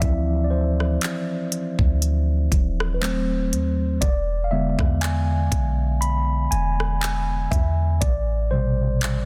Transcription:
0.00 0.98 D2 loud
0.00 3.03 E3 medium
0.00 0.02 F3 medium
0.00 1.48 F3 medium
0.00 0.02 C4 soft
0.00 1.48 C4 medium
0.00 1.48 E4 medium
0.00 0.44 D5 medium
0.00 3.04 E5 loud
0.00 3.04 F5 loud
0.00 3.04 A5 loud
0.00 kick loud
0.00 closed hi-hat medium
0.44 0.51 D5 medium
0.50 1.97 C5 medium
0.80 cross-stick medium
1.01 clap loud
1.01 closed hi-hat medium
1.52 closed hi-hat medium
1.79 2.49 D2 loud
1.79 kick medium
2.02 closed hi-hat medium
2.52 3.53 D#1 loud
2.52 kick medium
2.52 closed hi-hat medium
2.80 cross-stick medium
2.94 3.01 B4 medium
3.01 3.98 F#3 medium
3.01 3.98 A3 medium
3.01 3.98 C4 medium
3.01 4.04 C5 medium
3.01 clap loud
3.52 3.99 D#2 loud
3.52 closed hi-hat medium
4.01 4.76 E1 loud
4.01 4.46 D5 loud
4.01 kick loud
4.01 closed hi-hat medium
4.44 4.51 F5 medium
4.51 5.20 D3 medium
4.51 5.20 G#3 medium
4.51 5.20 B3 medium
4.51 5.03 E5 loud
4.79 5.49 E2 loud
4.79 kick loud
4.79 cross-stick medium
5.01 6.04 G#5 loud
5.01 clap loud
5.01 closed hi-hat medium
5.52 6.48 B1 loud
5.52 kick medium
5.52 closed hi-hat medium
6.01 6.53 B5 loud
6.01 closed hi-hat medium
6.51 7.48 E1 loud
6.51 6.98 G#5 loud
6.51 closed hi-hat medium
6.80 cross-stick medium
7.01 7.53 G#5 loud
7.01 clap loud
7.51 8.00 E2 loud
7.51 8.03 E5 medium
7.51 kick loud
7.51 closed hi-hat medium
8.01 9.25 A1 loud
8.01 8.53 D5 loud
8.01 kick loud
8.01 closed hi-hat medium
8.51 9.25 B2 medium
8.51 9.25 C3 medium
8.51 9.25 G3 medium
8.51 9.25 C5 medium
9.01 clap loud
9.01 closed hi-hat medium

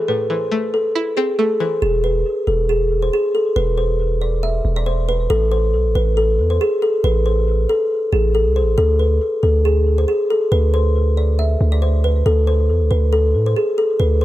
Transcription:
0.00 0.29 E3 medium
0.00 0.50 A3 medium
0.00 0.52 C4 medium
0.00 0.30 E4 loud
0.08 1.17 A2 medium
0.08 0.25 B4 loud
0.30 1.39 E3 medium
0.30 0.71 C5 medium
0.52 1.38 A3 loud
0.74 1.15 A4 medium
0.95 1.82 E4 loud
1.17 1.82 C4 medium
1.17 1.34 G#4 medium
1.39 1.82 A3 medium
1.39 1.56 A4 medium
1.60 1.82 E3 medium
1.60 1.77 C5 medium
1.82 2.24 E1 loud
1.82 1.99 G#4 loud
2.04 2.45 B4 medium
2.47 3.10 E1 loud
2.47 2.64 A4 medium
2.69 3.00 G#4 medium
3.02 3.10 C5 medium
3.13 3.30 G#4 medium
3.35 3.52 A4 medium
3.56 4.61 E1 loud
3.56 3.73 B4 loud
3.78 4.19 C5 medium
4.22 4.38 D5 medium
4.43 4.74 E5 medium
4.65 5.27 E1 loud
4.76 4.84 D5 medium
4.86 5.03 C5 medium
5.09 5.26 B4 medium
5.30 5.75 A1 loud
5.30 5.47 A4 loud
5.52 5.93 C5 medium
5.74 5.87 B1 loud
5.85 5.95 A1 loud
5.95 6.40 A1 loud
5.95 6.12 B4 medium
6.17 6.48 A4 medium
6.39 6.59 E2 loud
6.50 6.58 C5 medium
6.61 6.78 G#4 medium
6.82 6.99 A4 medium
7.04 7.67 A1 loud
7.04 7.21 B4 loud
7.26 7.67 C5 medium
7.69 8.10 A4 medium
8.12 8.47 A1 loud
8.12 8.30 G#4 medium
8.35 8.52 A4 medium
8.46 8.63 C2 loud
8.56 8.73 C5 medium
8.62 8.77 A1 loud
8.78 9.20 D2 loud
8.78 8.95 A4 loud
8.99 9.40 B4 medium
9.43 10.06 D2 loud
9.43 9.60 A4 medium
9.65 9.96 G#4 medium
9.98 10.06 C5 medium
10.08 10.25 G#4 medium
10.30 10.47 A4 medium
10.52 11.57 D2 loud
10.52 10.69 B4 loud
10.74 11.14 C5 medium
11.17 11.34 D5 medium
11.39 11.70 E5 medium
11.61 12.23 D2 loud
11.72 11.80 D5 medium
11.82 11.99 C5 medium
12.04 12.21 B4 medium
12.26 12.71 D2 loud
12.26 12.43 A4 loud
12.47 12.88 C5 medium
12.69 12.82 E2 loud
12.81 12.90 D2 loud
12.91 13.36 D2 loud
12.91 13.08 B4 medium
13.13 13.44 A4 medium
13.34 13.55 A2 loud
13.46 13.54 C5 medium
13.56 13.73 G#4 medium
13.78 13.95 A4 medium
14.00 14.25 D2 loud
14.00 14.17 B4 loud
14.21 14.25 C5 medium

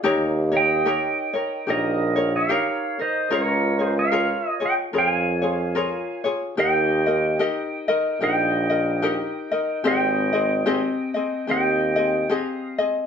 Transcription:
0.04 1.10 D#2 loud
0.04 0.52 D#4 medium
0.04 0.53 G4 medium
0.04 0.51 A#4 medium
0.04 0.50 C#5 medium
0.52 0.85 D#4 soft
0.52 0.85 A#4 soft
0.52 0.85 C#5 medium
0.57 1.65 D#5 medium
0.57 1.73 G5 medium
0.85 1.34 D#4 medium
0.85 1.34 G4 medium
0.85 1.34 A#4 medium
0.85 1.32 C#5 medium
1.33 1.67 D#4 soft
1.33 1.67 A#4 soft
1.33 1.67 C#5 medium
1.67 2.59 A#1 loud
1.67 2.16 D#4 medium
1.67 2.16 G4 soft
1.67 2.16 A#4 medium
1.67 2.15 C#5 medium
1.67 2.36 D#5 medium
1.71 2.31 A#4 medium
2.16 2.49 D#4 soft
2.16 2.49 A#4 soft
2.16 2.49 C#5 medium
2.36 2.96 C#5 medium
2.36 3.01 F5 medium
2.49 2.98 D#4 medium
2.49 2.98 G4 medium
2.49 2.98 A#4 medium
2.49 2.99 C#5 medium
2.99 3.31 D#4 soft
2.99 3.29 A#4 soft
2.99 3.31 C5 medium
2.99 3.33 D#5 medium
3.31 4.37 C#2 loud
3.31 3.80 F4 medium
3.31 3.79 G#4 medium
3.31 3.79 A#4 medium
3.31 3.94 A#4 medium
3.31 3.78 C#5 medium
3.35 3.82 C#5 medium
3.79 4.11 F4 soft
3.79 4.12 G#4 soft
3.79 3.98 C5 medium
3.79 4.12 C#5 soft
3.99 4.59 C#5 medium
3.99 4.49 F5 medium
4.12 4.61 F4 medium
4.12 4.60 G#4 medium
4.12 4.61 A#4 medium
4.12 4.59 C#5 medium
4.49 4.65 D#5 medium
4.60 4.92 F4 soft
4.60 4.93 G#4 soft
4.60 4.93 C#5 soft
4.65 4.74 D#5 medium
4.65 4.74 G5 medium
4.93 6.01 F2 loud
4.93 5.43 F4 medium
4.93 5.42 G#4 medium
4.93 5.42 A#4 medium
4.93 5.41 C#5 medium
4.98 6.23 F5 medium
4.98 5.09 G5 medium
5.09 6.23 G#5 medium
5.42 5.75 F4 soft
5.42 5.75 G#4 soft
5.42 5.75 C#5 soft
5.75 6.25 F4 medium
5.75 6.24 G#4 medium
5.75 6.24 A#4 medium
5.75 6.23 C#5 medium
6.24 6.57 F4 soft
6.24 6.58 G#4 soft
6.24 6.57 C#5 soft
6.57 7.50 D#2 loud
6.57 7.06 D#4 medium
6.57 7.06 G4 medium
6.57 7.06 A#4 medium
6.57 7.05 D#5 medium
6.57 8.18 D#5 medium
6.57 8.22 G5 medium
7.06 7.39 D#4 soft
7.06 7.39 A#4 soft
7.06 7.39 D#5 soft
7.39 7.88 D#4 medium
7.39 7.88 G4 medium
7.39 7.88 A#4 medium
7.39 7.87 D#5 medium
7.88 8.20 D#4 soft
7.88 8.21 A#4 medium
7.88 8.21 D#5 medium
8.20 9.27 A#1 medium
8.20 8.70 D#4 medium
8.20 8.69 G4 medium
8.20 8.70 A#4 medium
8.20 8.68 D#5 medium
8.20 9.82 D#5 medium
8.20 9.86 G5 medium
8.70 9.02 D#4 soft
8.70 9.02 A#4 soft
8.70 9.03 D#5 medium
9.02 9.52 D#4 medium
9.02 9.51 G4 medium
9.02 9.51 A#4 medium
9.02 9.50 D#5 medium
9.51 9.84 D#4 soft
9.51 9.85 A#4 soft
9.51 9.84 D#5 medium
9.84 10.90 G#1 loud
9.84 10.33 C4 medium
9.84 10.33 G4 medium
9.84 10.33 G#4 medium
9.84 10.31 D#5 medium
9.84 11.45 D#5 medium
9.84 11.46 G5 medium
10.33 10.65 C4 soft
10.33 10.65 G#4 soft
10.33 10.66 D#5 soft
10.66 11.15 C4 medium
10.66 11.15 G4 medium
10.66 11.14 G#4 medium
10.66 11.13 D#5 medium
11.14 11.47 C4 soft
11.14 11.47 G#4 soft
11.14 11.47 D#5 medium
11.47 12.40 D#2 medium
11.47 11.97 C4 medium
11.47 11.96 G4 soft
11.47 11.96 G#4 medium
11.47 11.95 D#5 medium
11.47 12.36 G5 medium
11.52 12.77 D#5 medium
11.96 12.29 C4 soft
11.96 12.29 G#4 soft
11.96 12.29 D#5 medium
12.29 12.79 C4 medium
12.29 12.78 G4 medium
12.29 12.78 G#4 medium
12.29 12.77 D#5 medium
12.36 12.76 F5 medium
12.78 13.07 C4 soft
12.78 13.07 G#4 soft
12.78 13.07 D#5 medium

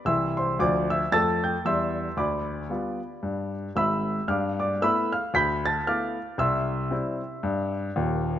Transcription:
0.05 0.48 C2 soft
0.05 0.49 E3 medium
0.05 0.35 E5 medium
0.05 0.35 C6 medium
0.05 0.37 E6 medium
0.37 0.58 C5 soft
0.37 0.59 C6 medium
0.59 1.01 D2 medium
0.59 1.02 F3 medium
0.59 0.89 D5 medium
0.59 0.90 D6 medium
0.90 1.11 E5 medium
0.90 1.12 E6 medium
1.12 1.54 F2 medium
1.12 1.55 A3 medium
1.12 1.41 A5 medium
1.12 1.41 E6 medium
1.12 1.43 A6 loud
1.44 1.64 G5 medium
1.44 1.65 G6 medium
1.65 2.07 E2 medium
1.65 2.08 G3 medium
1.65 2.14 E5 medium
1.65 2.15 C6 medium
1.65 2.18 E6 medium
2.17 2.62 D2 medium
2.17 3.50 D5 medium
2.17 3.50 B5 medium
2.17 3.54 D6 medium
2.70 2.99 G3 soft
2.70 2.99 B3 soft
2.70 2.99 F4 soft
3.23 3.67 G2 medium
3.76 4.18 G#1 medium
3.76 4.18 G#2 medium
3.76 4.26 E5 medium
3.76 4.25 B5 medium
3.76 4.29 E6 medium
4.28 4.73 G2 medium
4.28 4.58 F5 soft
4.28 4.58 D6 medium
4.28 4.59 F6 medium
4.60 4.80 D5 medium
4.60 4.81 D6 medium
4.82 5.11 A3 medium
4.82 5.11 B3 medium
4.82 5.11 E4 soft
4.82 5.11 E5 medium
4.82 5.11 B5 medium
4.82 5.12 E6 loud
5.12 5.33 F5 medium
5.12 5.34 F6 medium
5.34 5.78 D2 medium
5.34 5.63 B5 medium
5.34 5.63 G6 medium
5.34 5.65 B6 medium
5.66 5.86 A5 medium
5.66 5.87 A6 medium
5.87 6.16 A3 soft
5.87 6.16 B3 soft
5.87 6.16 E4 soft
5.87 6.37 F5 medium
5.87 6.36 D6 medium
5.87 6.39 F6 medium
6.38 6.83 C2 medium
6.38 7.72 E5 medium
6.38 7.71 C6 medium
6.38 7.75 E6 medium
6.91 7.20 G3 soft
6.91 7.20 C4 medium
6.91 7.21 E4 medium
7.43 7.88 G2 medium
7.96 8.39 D#1 medium
7.96 8.38 D#2 medium

